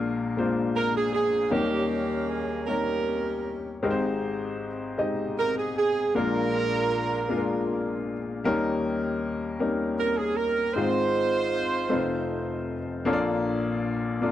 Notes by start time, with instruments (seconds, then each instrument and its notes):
Already playing: upright piano A#1 A#2 G#3 A#3 D4 F4 A#4
0.37 upright piano G#3 A#3 D4 F4 C5
0.76 horn section A#4
0.95 horn section G#4
1.13 horn section G#4
1.50 upright piano D#2 D#3 F#3 A#3 C#4 D#4 A#4, horn section A#3 C#4 G4
1.57 upright piano G3
1.88 horn section G4
2.28 horn section G#4
2.67 upright piano G3 A#3 C#4 D#4 C#5, horn section C#4 G4 A#4
3.83 upright piano G#1 G#2 G#3 C4 D#4 G4 A#4
3.91 upright piano C5
4.98 upright piano G#3 C4 D#4 G4 D#5
5.39 horn section A#4
5.58 horn section G#4
5.78 horn section G#4
6.15 upright piano A#1 A#2 G#3 A#3 D4 F4 A#4, horn section D4 F4 A#4
7.29 upright piano G#3 A#3 D4 F4 G#4
7.37 upright piano A#4
8.44 upright piano D#2 D#3 G3 A#3 C#4 D#4 A#4
9.59 upright piano G3 A#3 C#4 D#4 A#4
9.99 horn section A#4
10.17 horn section G#4
10.36 horn section A#4
10.74 upright piano G#1 G#2 G#3 C4 D#4 F4 C5, horn section D#4 F4 C5
11.89 upright piano F1 F2 A3 C4 D#4 F4 B4
11.97 upright piano C5
13.05 upright piano A#1 A#2 A#3 D4 F4 A4 C#5
13.13 upright piano D5
14.21 upright piano A#3 D4 F4 A4 D5